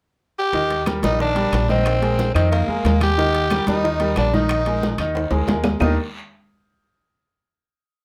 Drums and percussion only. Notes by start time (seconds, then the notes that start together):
0.53 high bongo, high conga, long guiro
0.70 high bongo, high conga, high timbale
0.86 high bongo, high conga, high timbale, short guiro, claves
1.02 high conga, high timbale, short guiro
1.19 high bongo, high conga, long guiro
1.36 high bongo, high conga, high timbale
1.52 high bongo, low bongo, high conga, high timbale, short guiro, claves
1.68 high bongo, high conga, short guiro
1.85 high bongo, high timbale, long guiro, claves
2.02 high bongo, high conga, high timbale
2.18 high bongo, high conga, short guiro
2.35 high conga, high timbale, short guiro, claves
2.52 high bongo, high conga, high timbale, long guiro
2.69 high bongo, high conga
2.85 high bongo, low bongo, high conga, high timbale, short guiro
3.01 high bongo, high conga, high timbale, short guiro, claves
3.17 high bongo, high conga, long guiro
3.35 high conga, high timbale
3.50 high bongo, high conga, high timbale, short guiro, claves
3.67 high conga, high timbale, short guiro
3.85 high bongo, high conga
4.00 high bongo, high conga, high timbale
4.16 high bongo, low bongo, high conga, high timbale, low timbale, short guiro, claves
4.33 high bongo, high conga, short guiro
4.49 high bongo, high timbale, long guiro, claves
4.66 high bongo, high conga, high timbale
4.82 high bongo, high conga, short guiro
4.98 high conga, high timbale, short guiro, claves
5.15 high bongo, high conga, high timbale, long guiro
5.31 high bongo, high conga, high timbale
5.47 high bongo, low bongo, high conga, low timbale, short guiro
5.64 high bongo, high conga, low timbale, short guiro, claves
5.80 low bongo, low conga, low timbale, long guiro, claves